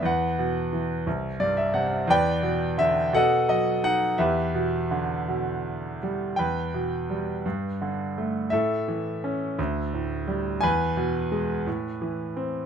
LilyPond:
<<
  \new Staff \with { instrumentName = "Grand piano" } { \time 6/8 \key e \minor \tempo 4. = 57 << { fis''4. r8 d''16 e''16 fis''8 | g''4 e''8 fis''8 dis''8 fis''8 | e''2~ e''8 r8 | g''2. |
e''2~ e''8 r8 | gis''2. | } \\ { b'4. r4. | <b' d''>4. <a' dis''>4. | <g' b'>2~ <g' b'>8 r8 | b'2. |
a'2~ a'8 r8 | b'2. | } >> }
  \new Staff \with { instrumentName = "Grand piano" } { \clef bass \time 6/8 \key e \minor e,8 b,8 e8 c,8 g,8 c8 | e,8 b,8 d8 b,8 fis8 dis'8 | e,8 b,8 d8 b,4 g8 | e,8 b,8 g8 g,8 d8 a8 |
a,8 e8 cis'8 d,8 a,8 g8 | e,8 b,8 gis8 a,8 e8 c'8 | }
>>